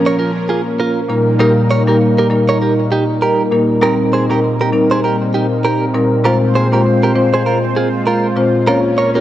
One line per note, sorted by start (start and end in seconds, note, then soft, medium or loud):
0.00 0.16 F3 medium
0.00 1.07 F3 medium
0.00 0.16 A#3 medium
0.00 3.78 A#3 medium
0.00 0.16 C#4 medium
0.00 1.07 C#4 medium
0.00 0.17 A#4 medium
0.00 1.07 A#4 medium
0.06 0.15 A#4 medium
0.06 0.14 C#5 medium
0.19 0.31 F4 medium
0.19 0.30 A#4 medium
0.49 0.61 F4 medium
0.49 0.60 G#4 medium
0.80 1.00 F4 medium
0.80 0.99 A#4 medium
1.09 1.33 A#2 medium
1.09 8.63 A#2 medium
1.09 6.20 G3 medium
1.09 1.33 G3 medium
1.09 1.33 A#3 medium
1.09 3.79 D#4 medium
1.09 1.33 D#4 medium
1.09 6.20 A#4 medium
1.09 1.33 A#4 medium
1.39 1.83 A#2 medium
1.39 1.83 G3 medium
1.39 1.83 A#3 medium
1.39 1.83 D#4 medium
1.39 1.52 G4 medium
1.39 1.83 A#4 loud
1.39 1.52 A#4 medium
1.71 1.82 A#4 medium
1.71 1.82 C#5 medium
1.87 2.27 A#2 medium
1.87 2.27 G3 medium
1.87 2.28 A#3 medium
1.87 2.28 D#4 medium
1.87 1.97 G4 medium
1.87 2.28 A#4 medium
1.87 1.96 A#4 medium
2.18 2.27 G4 medium
2.18 2.27 A#4 medium
2.30 2.59 A#2 medium
2.30 2.59 G3 medium
2.30 2.59 A#3 medium
2.30 2.59 D#4 medium
2.30 2.59 A#4 medium
2.49 2.57 A#4 medium
2.49 2.57 C#5 medium
2.62 2.73 G4 medium
2.62 2.73 A#4 medium
2.92 3.04 D#4 medium
2.92 3.03 G4 medium
3.22 3.42 G4 medium
3.22 3.42 A#4 medium
3.51 3.75 A#2 medium
3.51 3.75 G3 medium
3.51 3.75 A#3 medium
3.51 3.75 D#4 medium
3.51 3.76 A#4 medium
3.82 4.26 A#2 medium
3.82 4.26 G3 medium
3.82 4.26 C4 medium
3.82 8.63 C4 medium
3.82 4.26 D#4 medium
3.82 6.22 D#4 medium
3.82 3.95 G4 medium
3.82 4.26 A#4 loud
3.82 3.94 A#4 medium
4.13 4.25 G#4 medium
4.13 4.24 C5 medium
4.30 4.70 A#2 medium
4.30 4.70 G3 medium
4.30 4.70 C4 medium
4.30 4.70 D#4 medium
4.30 4.39 G4 medium
4.30 4.70 A#4 medium
4.30 4.39 A#4 medium
4.61 4.70 G4 medium
4.61 4.69 A#4 medium
4.73 5.01 A#2 medium
4.73 5.01 G3 medium
4.73 5.01 C4 medium
4.73 5.01 D#4 medium
4.73 5.01 A#4 medium
4.91 5.00 G#4 medium
4.91 4.99 C5 medium
5.04 5.16 G4 medium
5.04 5.15 A#4 medium
5.34 5.46 D#4 soft
5.34 5.46 G4 medium
5.65 5.85 G4 medium
5.65 5.84 A#4 medium
5.94 6.18 A#2 medium
5.94 6.18 G3 medium
5.94 6.18 C4 medium
5.94 6.18 D#4 medium
5.94 6.18 A#4 medium
6.24 6.68 A#2 medium
6.24 6.68 G#3 medium
6.24 8.65 G#3 medium
6.24 6.68 C4 medium
6.24 6.68 F4 medium
6.24 9.21 F4 medium
6.24 6.37 F4 medium
6.24 6.37 A#4 medium
6.24 6.68 C5 medium
6.24 8.65 C5 medium
6.55 6.67 G#4 medium
6.55 6.67 C5 medium
6.72 7.12 A#2 medium
6.72 7.12 G#3 medium
6.72 7.12 C4 medium
6.72 7.12 F4 medium
6.72 6.82 G4 medium
6.72 6.81 A#4 medium
6.72 7.12 C5 medium
7.03 7.12 G4 medium
7.03 7.11 A#4 medium
7.15 7.43 A#2 medium
7.15 7.44 G#3 medium
7.15 7.44 C4 medium
7.15 7.44 F4 medium
7.15 7.44 C5 medium
7.34 7.42 G#4 medium
7.34 7.42 C5 medium
7.46 7.58 F4 medium
7.46 7.58 A#4 medium
7.77 7.88 F4 medium
7.77 7.88 G#4 medium
8.07 8.27 F4 medium
8.07 8.26 A#4 medium
8.36 8.60 A#2 medium
8.36 8.60 G#3 medium
8.36 8.60 C4 medium
8.36 8.60 F4 medium
8.36 8.60 C5 medium
8.67 9.10 A#3 medium
8.67 9.21 A#3 medium
8.67 9.10 C#4 medium
8.67 9.21 C#4 medium
8.67 9.11 F4 medium
8.67 8.79 F4 medium
8.67 8.79 A#4 medium
8.67 9.21 C#5 medium
8.67 9.11 C#5 loud
8.98 9.10 A#4 medium
8.98 9.09 C#5 medium
9.15 9.21 A#3 medium
9.15 9.21 C#4 medium
9.15 9.21 F4 medium
9.15 9.21 G4 medium
9.15 9.21 A#4 medium
9.15 9.21 C#5 medium